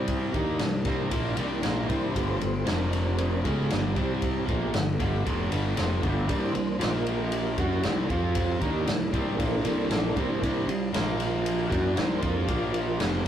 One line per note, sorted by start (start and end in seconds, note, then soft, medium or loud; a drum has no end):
0.00 0.31 C2 medium
0.00 0.31 C3 medium
0.00 0.33 C3 medium
0.00 0.32 G3 soft
0.00 0.33 G3 medium
0.00 0.31 C4 medium
0.00 0.33 C4 medium
0.00 0.32 G4 medium
0.08 kick loud
0.08 ride medium
0.31 0.58 D#2 medium
0.31 0.59 D#3 medium
0.31 2.10 E3 medium
0.31 2.10 A#3 soft
0.31 0.59 A#3 loud
0.31 2.11 D4 medium
0.31 0.60 D#4 medium
0.31 kick loud
0.31 ride medium
0.59 0.84 C2 medium
0.59 0.80 C3 medium
0.59 0.81 G3 medium
0.59 snare loud
0.59 ride medium
0.85 1.10 C2 medium
0.85 1.10 C3 medium
0.85 1.11 G3 medium
0.85 1.12 C4 medium
0.85 kick loud
0.85 snare soft
0.85 ride medium
1.10 1.36 A#1 medium
1.10 1.36 A#2 medium
1.10 1.37 F3 loud
1.10 1.37 A#3 medium
1.10 kick loud
1.10 ride medium
1.37 1.62 C2 medium
1.37 1.62 C3 medium
1.37 1.63 G3 medium
1.37 1.63 C4 loud
1.37 ride medium
1.62 1.88 A#1 medium
1.62 1.87 A#2 medium
1.62 1.87 F3 medium
1.62 1.88 A#3 loud
1.62 snare medium
1.62 ride medium
1.87 2.14 C2 medium
1.87 2.13 C3 medium
1.87 2.14 G3 medium
1.87 2.14 C4 medium
1.87 2.14 E4 medium
1.87 1.90 B4 medium
1.87 kick medium
1.87 ride medium
1.91 2.15 C5 medium
2.14 2.40 G1 medium
2.14 2.39 G2 medium
2.14 2.40 D3 medium
2.14 2.64 F3 medium
2.14 2.40 G3 medium
2.14 2.65 A3 soft
2.14 2.65 B3 medium
2.14 2.40 G4 medium
2.14 kick medium
2.14 ride medium
2.18 2.41 C5 medium
2.40 2.66 G1 medium
2.40 2.61 G2 medium
2.40 2.62 D3 medium
2.40 2.66 G4 medium
2.40 2.67 C5 medium
2.40 ride medium
2.65 3.41 F1 medium
2.65 3.43 F2 medium
2.65 3.40 C3 medium
2.65 3.43 C3 medium
2.65 3.40 F3 soft
2.65 3.44 F3 loud
2.65 3.41 C4 medium
2.65 2.91 D4 medium
2.65 2.91 A#4 medium
2.65 snare loud
2.65 ride medium
2.92 3.16 D4 medium
2.92 3.17 A#4 medium
2.92 snare soft
2.92 ride medium
3.18 3.42 D4 medium
3.18 3.44 A#4 loud
3.18 ride medium
3.44 3.69 C#2 medium
3.44 3.69 C#3 medium
3.44 3.94 F3 medium
3.44 3.70 G#3 loud
3.44 3.94 A3 soft
3.44 3.94 B3 medium
3.44 3.70 C#4 medium
3.44 4.96 G4 medium
3.44 kick loud
3.44 ride medium
3.70 3.95 G1 medium
3.70 3.96 G2 medium
3.70 3.95 D3 medium
3.70 3.95 G3 medium
3.70 snare medium
3.70 ride medium
3.95 4.45 C2 medium
3.95 4.45 C3 medium
3.95 4.46 C3 medium
3.95 4.46 G3 medium
3.95 4.47 C4 medium
3.95 kick loud
3.95 ride medium
4.22 kick loud
4.22 ride medium
4.46 4.72 A#1 medium
4.46 4.72 A#2 loud
4.46 4.72 F3 medium
4.46 6.26 F3 medium
4.46 6.26 A3 soft
4.46 4.73 A#3 loud
4.46 6.26 B3 medium
4.46 kick loud
4.46 ride medium
4.73 4.99 G1 medium
4.73 4.95 G2 medium
4.73 4.95 D3 medium
4.73 snare loud
4.73 ride medium
4.99 5.24 G1 loud
4.99 5.24 G2 medium
4.99 5.25 D3 medium
4.99 5.25 G3 medium
4.99 kick loud
4.99 ride medium
5.25 5.50 F1 medium
5.25 5.50 F2 medium
5.25 5.51 C3 loud
5.25 5.51 F3 loud
5.25 kick medium
5.25 ride medium
5.51 5.76 G1 medium
5.51 5.76 G2 medium
5.51 5.76 D3 medium
5.51 5.77 G3 loud
5.51 ride medium
5.76 6.02 F1 medium
5.76 6.01 F2 medium
5.76 6.02 C3 medium
5.76 6.02 F3 medium
5.76 snare medium
5.76 ride medium
6.01 6.27 G1 medium
6.01 6.27 G2 medium
6.01 6.28 D3 medium
6.01 6.27 G3 medium
6.01 kick loud
6.01 ride medium
6.06 6.17 G5 medium
6.17 6.29 E5 medium
6.28 6.53 C2 medium
6.28 6.52 C3 medium
6.28 6.78 E3 medium
6.28 6.53 G3 medium
6.28 6.78 A#3 soft
6.28 6.54 C4 medium
6.28 6.78 D4 medium
6.28 6.42 D5 medium
6.28 kick loud
6.28 ride medium
6.38 6.42 B4 medium
6.43 6.93 C5 medium
6.53 6.79 C2 medium
6.53 6.75 C3 medium
6.53 6.75 G3 medium
6.53 ride medium
6.79 7.55 A#1 medium
6.79 7.57 A#2 medium
6.79 7.54 F3 medium
6.79 7.57 F3 loud
6.79 7.53 A#3 soft
6.79 7.57 A#3 loud
6.79 7.54 F4 medium
6.79 snare medium
6.79 ride medium
6.95 7.19 A#4 medium
7.07 ride medium
7.20 7.32 A4 medium
7.32 8.83 G4 medium
7.32 ride medium
7.58 7.82 F#2 loud
7.58 8.08 E3 medium
7.58 7.83 F#3 medium
7.58 8.07 A#3 soft
7.58 7.83 C#4 loud
7.58 8.08 D4 medium
7.58 7.84 F#4 medium
7.58 kick loud
7.58 ride medium
7.83 8.09 C2 medium
7.83 8.09 C3 medium
7.83 8.10 G3 medium
7.83 8.10 C4 medium
7.83 snare loud
7.83 ride medium
8.09 8.58 F2 medium
8.09 8.60 F3 medium
8.09 8.61 C4 medium
8.09 8.60 C4 medium
8.09 8.61 F4 medium
8.09 8.60 F4 medium
8.09 kick loud
8.09 ride medium
8.35 kick loud
8.35 ride medium
8.60 8.85 D#2 medium
8.60 8.86 D#3 loud
8.60 10.65 E3 medium
8.60 8.86 A#3 loud
8.60 8.87 D#4 loud
8.60 kick medium
8.60 ride medium
8.65 10.65 A#3 soft
8.65 10.65 D4 medium
8.87 9.11 C2 medium
8.87 9.08 C3 medium
8.87 9.08 G3 medium
8.87 snare loud
8.87 ride medium
9.13 9.37 C2 loud
9.13 9.38 C3 medium
9.13 9.39 G3 medium
9.13 9.39 C4 medium
9.13 kick loud
9.13 ride medium
9.37 9.63 A#1 medium
9.37 9.64 A#2 medium
9.37 9.64 F3 loud
9.37 9.65 A#3 loud
9.37 9.40 G#4 medium
9.37 kick loud
9.37 ride medium
9.42 10.16 A4 loud
9.64 9.89 C2 loud
9.64 9.90 C3 medium
9.64 9.90 G3 medium
9.64 9.90 C4 loud
9.64 ride medium
9.90 10.15 A#1 medium
9.90 10.15 A#2 medium
9.90 10.16 F3 loud
9.90 10.16 A#3 medium
9.90 snare loud
9.90 ride medium
10.16 10.40 C2 medium
10.16 10.41 C3 medium
10.16 10.41 G3 medium
10.16 10.42 C4 medium
10.16 10.30 G4 medium
10.16 kick medium
10.16 ride medium
10.32 10.68 E4 medium
10.42 10.66 C2 medium
10.42 10.66 C3 medium
10.42 10.67 G3 medium
10.42 10.67 C4 medium
10.42 kick medium
10.42 ride medium
10.67 10.92 C2 medium
10.67 10.88 C3 medium
10.67 10.89 G3 medium
10.67 10.93 F4 loud
10.67 ride medium
10.93 11.67 A#1 medium
10.93 11.69 A#2 medium
10.93 11.67 F3 medium
10.93 11.70 F3 medium
10.93 11.67 A#3 medium
10.93 11.70 A#3 loud
10.93 11.67 F4 medium
10.93 snare loud
10.93 ride medium
11.20 snare soft
11.20 ride medium
11.46 ride loud
11.66 12.44 E3 soft
11.66 11.94 F#3 medium
11.66 12.44 A#3 soft
11.66 11.96 C#4 medium
11.66 11.70 F#5 medium
11.71 11.95 F#2 loud
11.71 12.45 D4 medium
11.71 11.96 F#4 medium
11.71 11.83 G5 medium
11.71 kick loud
11.71 ride medium
11.85 11.96 D5 medium
11.95 12.21 C2 loud
11.95 12.20 C3 loud
11.95 12.20 G3 loud
11.95 12.19 C4 medium
11.95 12.09 G5 medium
11.95 snare loud
11.95 ride medium
12.09 12.21 C5 medium
12.20 12.47 F2 medium
12.20 12.46 F3 medium
12.20 12.47 C4 medium
12.20 12.47 F4 medium
12.20 12.35 A#4 medium
12.20 kick loud
12.20 ride medium
12.36 12.48 G4 medium
12.47 12.97 A#1 medium
12.47 12.98 A#2 medium
12.47 12.99 F3 medium
12.47 12.98 F3 medium
12.47 12.99 A#3 medium
12.47 12.98 A#3 medium
12.47 12.99 F4 loud
12.47 kick loud
12.47 ride medium
12.74 ride medium
13.00 13.24 F1 medium
13.00 13.25 F2 medium
13.00 13.25 C3 medium
13.00 13.26 F3 loud
13.00 13.28 A3 medium
13.00 13.28 B3 medium
13.00 13.28 F4 medium
13.00 snare loud
13.00 ride medium